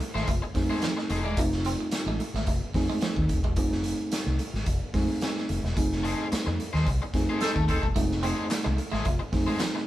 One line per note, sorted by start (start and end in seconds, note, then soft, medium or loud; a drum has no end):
0.00 muted clean electric guitar stroke soft
0.00 closed hi-hat medium
0.14 0.26 G#1 medium
0.14 0.22 A3 medium
0.14 0.27 A3 medium
0.14 0.27 D#4 medium
0.14 0.27 G#4 medium
0.14 0.28 C5 loud
0.14 snare soft
0.27 0.41 F1 loud
0.27 0.36 A3 medium
0.27 muted overdriven electric guitar stroke soft
0.27 kick loud
0.27 closed hi-hat medium
0.42 muted overdriven electric guitar stroke soft
0.55 0.68 F2 medium
0.55 1.18 A3 loud
0.55 1.19 C4 medium
0.55 1.19 D#4 medium
0.55 1.19 G#4 loud
0.55 muted clean electric guitar stroke soft
0.55 kick medium
0.55 snare soft
0.55 open hi-hat medium
0.70 0.78 G#3 medium
0.70 0.81 A3 medium
0.70 0.82 D#4 medium
0.70 0.82 G#4 medium
0.70 0.83 C5 medium
0.82 0.92 F3 medium
0.82 muted overdriven electric guitar stroke soft
0.82 snare loud
0.82 closed hi-hat medium
0.97 muted overdriven electric guitar stroke soft
0.97 muted clean electric guitar stroke soft
0.97 snare soft
1.10 1.25 F1 medium
1.10 1.25 A3 medium
1.10 1.25 D#4 medium
1.10 1.24 G#4 medium
1.10 1.24 C5 medium
1.10 closed hi-hat medium
1.25 1.36 E1 medium
1.25 1.33 G#3 medium
1.25 1.39 A3 soft
1.25 1.38 D#4 medium
1.25 1.38 G#4 medium
1.25 1.38 D5 medium
1.37 1.74 F1 loud
1.37 2.22 A3 medium
1.37 1.47 A3 medium
1.37 2.22 C4 medium
1.37 2.22 D#4 medium
1.37 2.22 F4 loud
1.37 kick loud
1.37 closed hi-hat loud
1.52 snare soft
1.65 1.74 C4 medium
1.65 closed hi-hat medium
1.80 muted clean electric guitar stroke soft
1.91 snare loud
1.91 closed hi-hat loud
2.06 2.18 A1 medium
2.06 2.15 G#3 medium
2.20 muted clean electric guitar stroke soft
2.20 closed hi-hat medium
2.34 2.45 G#1 loud
2.34 2.43 A3 medium
2.34 snare soft
2.47 2.60 F1 loud
2.47 2.56 A3 medium
2.47 kick loud
2.47 closed hi-hat medium
2.74 2.87 F2 medium
2.74 3.38 A3 medium
2.74 3.38 C4 medium
2.74 3.38 D#4 medium
2.74 3.39 G#4 loud
2.74 muted clean electric guitar stroke soft
2.74 kick medium
2.74 snare soft
2.74 open hi-hat medium
2.90 2.97 G#3 medium
3.01 3.10 F3 medium
3.01 snare medium
3.01 closed hi-hat medium
3.16 3.28 D#2 medium
3.16 muted clean electric guitar stroke soft
3.16 kick medium
3.29 3.44 D#1 medium
3.29 kick medium
3.29 closed hi-hat medium
3.44 3.57 E1 medium
3.44 3.51 G#3 medium
3.44 kick medium
3.56 3.93 F1 loud
3.56 4.41 A3 medium
3.56 4.41 C4 medium
3.56 4.42 D#4 medium
3.56 4.42 G#4 medium
3.56 kick loud
3.56 closed hi-hat loud
3.72 snare soft
3.84 closed hi-hat medium
4.12 snare loud
4.12 closed hi-hat loud
4.27 4.38 C2 medium
4.39 closed hi-hat medium
4.54 4.65 G#1 medium
4.54 snare soft
4.66 4.79 F1 loud
4.66 kick loud
4.66 closed hi-hat medium
4.94 5.06 F2 medium
4.94 5.01 G#3 medium
4.94 5.57 C4 medium
4.94 5.58 D#4 medium
4.94 5.58 G#4 loud
4.94 kick medium
4.94 snare soft
4.94 open hi-hat medium
5.00 5.61 A3 loud
5.21 snare loud
5.21 closed hi-hat medium
5.37 snare soft
5.49 5.62 F1 medium
5.49 closed hi-hat medium
5.63 5.75 E1 medium
5.63 snare soft
5.77 6.13 F1 medium
5.77 6.61 A3 medium
5.77 6.61 C4 medium
5.77 6.61 D#4 medium
5.77 6.61 G#4 medium
5.77 kick loud
5.77 closed hi-hat medium
5.92 snare soft
6.03 6.25 A3 medium
6.03 6.26 D#4 loud
6.03 6.26 G#4 loud
6.03 6.26 C5 medium
6.03 closed hi-hat medium
6.32 muted overdriven electric guitar stroke soft
6.32 muted fingered electric bass stroke soft
6.32 snare loud
6.32 closed hi-hat loud
6.46 6.57 F2 loud
6.46 muted overdriven electric guitar stroke soft
6.60 closed hi-hat medium
6.73 6.85 D#2 medium
6.73 6.87 A3 medium
6.73 6.87 D#4 medium
6.73 6.87 G#4 medium
6.73 6.88 C5 medium
6.73 snare soft
6.87 6.99 C2 loud
6.87 muted overdriven electric guitar stroke soft
6.87 kick loud
6.87 closed hi-hat medium
7.02 muted overdriven electric guitar stroke medium
7.14 7.26 F2 medium
7.14 7.77 A3 medium
7.14 7.77 C4 medium
7.14 7.78 D#4 medium
7.14 7.78 G#4 loud
7.14 kick medium
7.14 snare soft
7.14 closed hi-hat medium
7.29 7.41 A3 medium
7.29 7.42 D#4 medium
7.29 7.42 G#4 medium
7.29 7.43 C5 medium
7.41 7.63 A3 medium
7.41 7.51 C4 loud
7.41 7.51 D#4 loud
7.41 7.56 D#4 medium
7.41 7.56 G#4 medium
7.41 7.51 A4 loud
7.41 7.55 C5 loud
7.41 snare loud
7.41 closed hi-hat medium
7.56 7.67 D#2 medium
7.56 muted overdriven electric guitar stroke soft
7.56 kick medium
7.68 7.81 D#1 medium
7.68 7.86 A3 medium
7.68 7.86 C4 medium
7.68 7.86 D#4 medium
7.68 7.83 D#4 medium
7.68 7.82 G#4 medium
7.68 7.86 A4 loud
7.68 7.82 C5 medium
7.68 kick medium
7.68 closed hi-hat medium
7.83 7.94 E1 medium
7.83 muted overdriven electric guitar stroke soft
7.83 kick medium
7.95 8.32 F1 loud
7.95 8.02 G#3 medium
7.95 8.04 A3 medium
7.95 8.80 C4 medium
7.95 8.80 D#4 medium
7.95 8.80 G#4 medium
7.95 kick loud
7.95 closed hi-hat loud
8.02 8.83 A3 medium
8.11 snare soft
8.23 8.45 A3 medium
8.23 8.31 C4 medium
8.23 8.45 D#4 medium
8.23 8.45 G#4 medium
8.23 8.46 C5 medium
8.23 closed hi-hat medium
8.37 muted clean electric guitar stroke soft
8.50 muted overdriven electric guitar stroke soft
8.50 snare loud
8.50 clap medium
8.50 closed hi-hat loud
8.64 8.77 C2 medium
8.64 8.72 G#3 medium
8.64 muted overdriven electric guitar stroke soft
8.77 muted clean electric guitar stroke soft
8.77 closed hi-hat medium
8.92 9.04 G#1 medium
8.92 8.99 A3 medium
8.92 9.04 A3 medium
8.92 9.05 D#4 medium
8.92 9.05 G#4 medium
8.92 9.05 C5 medium
8.92 snare soft
9.05 9.18 F1 loud
9.05 9.13 A3 medium
9.05 muted overdriven electric guitar stroke soft
9.05 kick loud
9.05 closed hi-hat medium
9.19 muted overdriven electric guitar stroke soft
9.32 9.45 F2 medium
9.32 9.87 A3 loud
9.32 9.87 C4 medium
9.32 9.87 D#4 medium
9.32 9.87 G#4 medium
9.32 muted clean electric guitar stroke soft
9.32 kick medium
9.32 snare soft
9.32 open hi-hat medium
9.47 9.55 G#3 medium
9.47 9.59 A3 medium
9.47 9.59 D#4 medium
9.47 9.59 G#4 medium
9.47 9.60 C5 medium
9.59 9.68 F3 medium
9.59 muted overdriven electric guitar stroke soft
9.59 snare loud
9.59 clap medium
9.59 closed hi-hat medium
9.75 muted clean electric guitar stroke soft
9.75 muted overdriven electric guitar stroke soft
9.75 snare soft